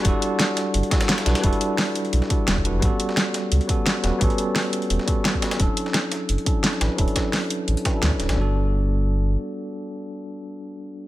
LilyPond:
<<
  \new Staff \with { instrumentName = "Tine electric piano" } { \time 4/4 \key g \lydian \tempo 4 = 173 <g d' e' fis' a'>2~ <g d' e' fis' a'>8 <g d' e' fis' a'>4 <g d' e' fis' b'>8 | <g d' e' fis' a'>2~ <g d' e' fis' a'>8 <g d' e' fis' a'>4 <g d' e' fis' b'>8 | <g b cis' fis' a'>2~ <g b cis' fis' a'>8 <g b cis' fis' a'>4 <g b cis' fis' b'>8 | <g b cis' fis' a'>2~ <g b cis' fis' a'>8 <g b cis' fis' a'>4 <g b cis' fis' b'>8 |
<fis cis' d' e' a'>2~ <fis cis' d' e' a'>8 <fis cis' d' e' a'>4 <fis cis' d' e' b'>8 | <fis cis' d' e' a'>2~ <fis cis' d' e' a'>8 <fis cis' d' e' b'>16 <fis cis' d' e' a'>4~ <fis cis' d' e' a'>16 | <g b d' fis' a'>1~ | <g b d' fis' a'>1 | }
  \new Staff \with { instrumentName = "Sub bass" } { \clef bass \time 4/4 \key g \lydian e,,16 r4. r16 g,,16 r4 r16 b,,16 r16 | e,,16 r4. r16 b,,16 r8. e,,8. g,,16 | a,,16 r4. r16 cis,16 r4 r16 e,,16 r16 | a,,16 r4. r16 e,,16 r4. r16 |
d,,16 r4. r16 fis,,16 r4 r16 a,,16 r16 | d,,16 r4. r16 a,,16 r8. d,16 r16 d,,16 a,,16 | g,,2. r4 | r1 | }
  \new DrumStaff \with { instrumentName = "Drums" } \drummode { \time 4/4 <hh bd>8 hh8 <hh sn>8 <hh sn>8 hh16 hh16 <hh bd sn>16 <hh sn>16 <hh sn>16 <hh sn>16 <hh sn>16 <hh sn>16 | <hh bd>16 hh16 hh8 <hh hho sn>8 hh16 hh16 hh16 sn16 <hh bd>8 <hh sn>16 bd16 hh8 | <hh bd>8 hh16 sn16 <hh sn>8 <hh sn>8 hh16 hh16 <hh bd>8 <hh sn>8 <hh sn>8 | <hh bd>16 hh16 hh8 <hh hho sn>8 hh16 hh16 hh16 sn16 <hh bd>8 <hh sn>16 bd16 <hh sn>16 <hh sn>16 |
<hh bd>8 hh16 sn16 <hh sn>8 <hh sn>8 hh16 hh16 <hh bd>8 <hh sn>16 sn16 <hh sn>8 | <hh bd>16 hh16 <hh bd sn>8 <hh hho sn>8 hh8 hh16 hh16 <hh bd sn>8 <hh sn>16 bd16 <hh sn>16 <hh sn>16 | r4 r4 r4 r4 | r4 r4 r4 r4 | }
>>